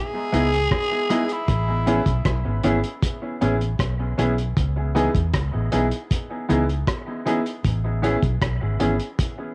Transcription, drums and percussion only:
0.34 closed hi-hat
0.53 closed hi-hat
0.71 kick, cross-stick, closed hi-hat
1.10 closed hi-hat
1.29 closed hi-hat
1.48 kick, closed hi-hat
1.87 closed hi-hat
2.06 kick, closed hi-hat
2.25 kick, cross-stick, closed hi-hat
2.64 closed hi-hat
2.84 closed hi-hat
3.03 kick, closed hi-hat
3.42 closed hi-hat
3.61 closed hi-hat
3.79 kick, cross-stick, closed hi-hat
4.19 closed hi-hat
4.38 closed hi-hat
4.57 kick, closed hi-hat
4.96 closed hi-hat
5.15 kick, closed hi-hat
5.34 kick, cross-stick, closed hi-hat
5.72 closed hi-hat
5.91 closed hi-hat
6.11 kick, closed hi-hat
6.50 closed hi-hat
6.69 closed hi-hat
6.88 kick, cross-stick, closed hi-hat
7.27 closed hi-hat
7.46 closed hi-hat
7.65 kick, closed hi-hat
8.04 closed hi-hat
8.23 kick, closed hi-hat
8.42 kick, cross-stick, closed hi-hat
8.80 closed hi-hat
9.00 closed hi-hat
9.19 kick, closed hi-hat

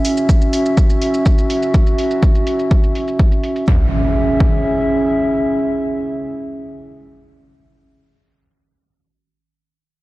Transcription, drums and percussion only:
0.05 open hi-hat, shaker
0.17 shaker
0.29 kick, shaker
0.41 shaker
0.53 open hi-hat, shaker
0.66 shaker
0.77 kick, shaker
0.90 shaker
1.02 open hi-hat
1.14 shaker
1.26 kick, shaker
1.38 shaker
1.50 open hi-hat, shaker
1.63 shaker
1.74 kick, shaker
1.87 shaker
1.98 open hi-hat, shaker
2.11 shaker
2.23 kick, shaker
2.35 shaker
2.47 open hi-hat, shaker
2.59 shaker
2.71 kick, shaker
2.84 shaker
2.95 open hi-hat
3.08 shaker
3.19 kick, shaker
3.32 shaker
3.44 open hi-hat, shaker
3.56 open hi-hat, shaker
3.68 kick
4.40 kick

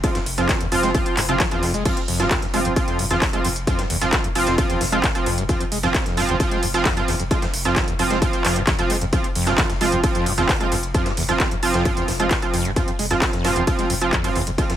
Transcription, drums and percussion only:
0.04 kick, closed hi-hat, ride
0.15 snare, closed hi-hat
0.26 open hi-hat, ride
0.38 snare, closed hi-hat
0.49 kick, snare, clap, closed hi-hat, ride
0.61 closed hi-hat, ride
0.72 open hi-hat, ride
0.83 snare, closed hi-hat
0.95 kick, closed hi-hat, ride
1.06 closed hi-hat
1.17 snare, clap, open hi-hat, ride
1.29 closed hi-hat
1.40 kick, snare, clap, closed hi-hat, ride
1.51 closed hi-hat, ride
1.63 open hi-hat, ride
1.74 closed hi-hat
1.85 kick, closed hi-hat, ride, crash
1.97 closed hi-hat, ride
2.08 open hi-hat, ride
2.20 snare, closed hi-hat
2.31 kick, snare, clap, closed hi-hat, ride
2.42 snare, closed hi-hat
2.54 open hi-hat, ride
2.65 closed hi-hat
2.76 kick, closed hi-hat, ride
2.88 closed hi-hat
2.99 open hi-hat, ride
3.11 snare, closed hi-hat
3.22 kick, snare, clap, closed hi-hat, open hi-hat
3.33 closed hi-hat
3.45 open hi-hat, ride
3.56 closed hi-hat
3.67 kick, closed hi-hat, ride
3.79 snare, closed hi-hat
3.90 open hi-hat, ride
4.01 snare, closed hi-hat
4.13 kick, snare, clap, closed hi-hat, ride
4.24 closed hi-hat, ride
4.35 open hi-hat, ride
4.47 snare, closed hi-hat
4.58 kick, closed hi-hat, ride
4.70 closed hi-hat
4.81 snare, open hi-hat, ride
4.92 closed hi-hat
5.04 kick, snare, clap, closed hi-hat, ride
5.15 closed hi-hat, ride
5.26 open hi-hat, ride
5.38 closed hi-hat
5.49 kick, closed hi-hat, ride
5.60 closed hi-hat, ride
5.72 open hi-hat, ride
5.83 snare, closed hi-hat
5.94 kick, snare, clap, closed hi-hat, ride
6.06 snare, closed hi-hat
6.17 open hi-hat, ride
6.29 closed hi-hat
6.40 kick, closed hi-hat, ride
6.51 closed hi-hat
6.63 open hi-hat, ride
6.74 snare, closed hi-hat
6.85 kick, snare, clap, closed hi-hat, open hi-hat
6.97 closed hi-hat
7.08 open hi-hat, ride
7.20 closed hi-hat
7.31 kick, closed hi-hat, ride
7.42 snare, closed hi-hat
7.54 open hi-hat, ride
7.65 snare, closed hi-hat
7.76 kick, snare, clap, closed hi-hat, ride
7.88 closed hi-hat, ride
7.99 open hi-hat, ride
8.10 snare, closed hi-hat
8.22 kick, closed hi-hat, ride
8.33 closed hi-hat
8.45 snare, clap, open hi-hat, ride
8.56 closed hi-hat
8.67 kick, snare, clap, closed hi-hat, ride
8.79 closed hi-hat, ride
8.90 open hi-hat, ride
9.01 closed hi-hat
9.13 kick, closed hi-hat, ride
9.24 closed hi-hat, ride
9.35 open hi-hat, ride
9.47 snare, closed hi-hat
9.58 kick, snare, clap, closed hi-hat, ride
9.70 snare, closed hi-hat
9.81 open hi-hat, ride
9.92 closed hi-hat
10.04 kick, closed hi-hat, ride
10.15 closed hi-hat
10.26 open hi-hat, ride
10.38 snare, closed hi-hat
10.49 kick, snare, clap, closed hi-hat, open hi-hat
10.60 closed hi-hat
10.72 open hi-hat, ride
10.83 closed hi-hat
10.94 kick, closed hi-hat, ride
11.06 snare, closed hi-hat
11.17 open hi-hat, ride
11.29 snare, closed hi-hat
11.40 kick, snare, clap, closed hi-hat, ride
11.51 closed hi-hat, ride
11.63 open hi-hat, ride
11.74 snare, closed hi-hat
11.85 kick, closed hi-hat, ride
11.97 closed hi-hat
12.08 snare, open hi-hat, ride
12.20 closed hi-hat
12.31 kick, snare, clap, closed hi-hat, ride
12.42 closed hi-hat, ride
12.54 open hi-hat, ride
12.65 closed hi-hat
12.76 kick, closed hi-hat, ride
12.88 closed hi-hat, ride
12.99 open hi-hat, ride
13.11 snare, closed hi-hat
13.22 kick, snare, clap, closed hi-hat, ride
13.33 snare, closed hi-hat
13.45 snare, open hi-hat, ride
13.56 closed hi-hat
13.67 kick, closed hi-hat, ride
13.79 closed hi-hat
13.90 open hi-hat, ride
14.01 closed hi-hat, ride
14.13 kick, clap, closed hi-hat, ride
14.24 closed hi-hat, ride
14.35 open hi-hat, ride
14.47 closed hi-hat, ride
14.58 kick, closed hi-hat, ride
14.70 snare, closed hi-hat

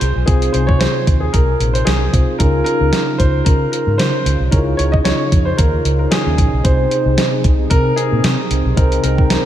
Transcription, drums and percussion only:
0.01 closed hi-hat
0.28 kick, closed hi-hat
0.42 closed hi-hat
0.54 closed hi-hat
0.69 kick
0.81 snare, closed hi-hat
1.07 kick, closed hi-hat
1.34 kick, closed hi-hat
1.60 closed hi-hat
1.75 closed hi-hat
1.87 snare, closed hi-hat
2.13 kick, closed hi-hat
2.40 kick, closed hi-hat
2.66 closed hi-hat
2.93 snare, closed hi-hat
3.20 kick, closed hi-hat
3.46 kick, closed hi-hat
3.73 closed hi-hat
3.99 snare, closed hi-hat
4.26 closed hi-hat
4.52 kick, closed hi-hat
4.79 closed hi-hat
4.94 kick
5.05 snare, closed hi-hat
5.32 kick, closed hi-hat
5.58 kick, closed hi-hat
5.85 closed hi-hat
6.12 snare, closed hi-hat
6.38 kick, closed hi-hat
6.65 kick, closed hi-hat
6.91 closed hi-hat
7.18 snare, closed hi-hat
7.44 kick, closed hi-hat
7.71 kick, closed hi-hat
7.97 closed hi-hat
8.24 snare, closed hi-hat
8.51 closed hi-hat
8.77 kick, closed hi-hat
8.92 closed hi-hat
9.04 closed hi-hat
9.18 kick
9.30 snare, closed hi-hat

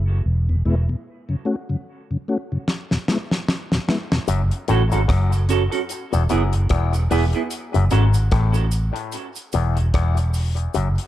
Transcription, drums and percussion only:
2.68 snare
2.91 snare
3.08 snare
3.31 snare
3.48 snare
3.72 snare
3.89 snare
4.12 snare
4.28 closed hi-hat, cabasa
4.51 closed hi-hat
4.68 closed hi-hat, cabasa
4.92 closed hi-hat, cabasa
5.09 kick, cross-stick, closed hi-hat
5.32 closed hi-hat, cabasa
5.49 closed hi-hat, cabasa
5.72 closed hi-hat
5.89 closed hi-hat, cabasa
6.13 closed hi-hat, cabasa
6.29 closed hi-hat, cabasa
6.53 closed hi-hat
6.69 kick, cross-stick, closed hi-hat
6.93 closed hi-hat, cabasa
7.11 open hi-hat, cabasa
7.33 closed hi-hat
7.51 closed hi-hat, cabasa
7.74 closed hi-hat
7.91 closed hi-hat, cabasa
8.14 closed hi-hat, cabasa
8.31 kick, cross-stick, closed hi-hat
8.54 closed hi-hat, cabasa
8.71 closed hi-hat, cabasa
8.96 closed hi-hat
9.12 closed hi-hat, cabasa
9.35 closed hi-hat, cabasa
9.52 closed hi-hat, cabasa
9.77 closed hi-hat
9.94 kick, cross-stick, closed hi-hat
10.17 closed hi-hat, cabasa
10.34 open hi-hat, cabasa
10.57 closed hi-hat
10.74 closed hi-hat, cabasa
10.98 closed hi-hat

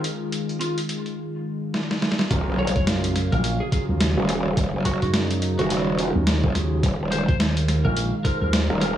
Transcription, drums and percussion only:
0.04 closed hi-hat
0.32 closed hi-hat
0.49 closed hi-hat
0.61 closed hi-hat
0.78 closed hi-hat
0.89 closed hi-hat
1.06 closed hi-hat
1.74 snare
1.91 snare
2.02 snare
2.12 snare
2.19 snare
2.21 snare
2.31 kick, closed hi-hat
2.67 closed hi-hat
2.76 kick, closed hi-hat
2.87 snare, closed hi-hat
3.04 closed hi-hat
3.16 snare, closed hi-hat
3.32 closed hi-hat
3.44 closed hi-hat
3.72 kick, closed hi-hat
4.01 snare, closed hi-hat
4.29 snare, closed hi-hat
4.57 kick, closed hi-hat
4.85 kick, closed hi-hat
5.02 closed hi-hat
5.14 snare, closed hi-hat
5.31 closed hi-hat
5.42 closed hi-hat
5.59 closed hi-hat
5.70 snare, closed hi-hat
5.99 closed hi-hat
6.27 snare, closed hi-hat
6.44 kick
6.55 snare, closed hi-hat
6.83 kick, closed hi-hat
7.12 closed hi-hat
7.29 kick, closed hi-hat
7.40 snare, closed hi-hat
7.57 closed hi-hat
7.68 snare, closed hi-hat
7.97 closed hi-hat
8.25 kick, closed hi-hat
8.53 snare, closed hi-hat
8.81 snare, closed hi-hat

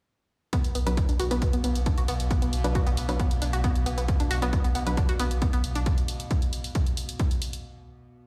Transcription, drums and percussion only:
0.53 kick, closed hi-hat
0.64 closed hi-hat
0.75 open hi-hat
0.87 closed hi-hat
0.97 kick, closed hi-hat
1.09 closed hi-hat
1.20 open hi-hat
1.31 closed hi-hat
1.42 kick, closed hi-hat
1.53 closed hi-hat
1.64 open hi-hat
1.75 closed hi-hat
1.86 kick, closed hi-hat
1.98 closed hi-hat
2.08 open hi-hat
2.20 closed hi-hat
2.31 kick, closed hi-hat
2.42 closed hi-hat
2.53 open hi-hat
2.64 closed hi-hat
2.75 kick, closed hi-hat
2.87 closed hi-hat
2.97 open hi-hat
3.09 open hi-hat
3.20 kick, closed hi-hat
3.31 closed hi-hat
3.42 open hi-hat
3.53 closed hi-hat
3.64 kick, closed hi-hat
3.76 closed hi-hat
3.86 open hi-hat
3.98 closed hi-hat
4.08 kick, closed hi-hat
4.20 closed hi-hat
4.31 open hi-hat
4.42 closed hi-hat
4.53 kick, closed hi-hat
4.64 closed hi-hat
4.75 open hi-hat
4.87 closed hi-hat
4.97 kick, closed hi-hat
5.09 closed hi-hat
5.20 open hi-hat
5.31 closed hi-hat
5.42 kick, closed hi-hat
5.53 closed hi-hat
5.64 open hi-hat
5.75 closed hi-hat
5.86 kick, closed hi-hat
5.98 closed hi-hat
6.08 open hi-hat
6.20 closed hi-hat
6.31 kick, closed hi-hat
6.42 closed hi-hat
6.53 open hi-hat
6.64 open hi-hat
6.75 kick, closed hi-hat
6.86 closed hi-hat
6.97 open hi-hat
7.09 closed hi-hat
7.20 kick, closed hi-hat
7.31 closed hi-hat
7.42 open hi-hat
7.53 closed hi-hat

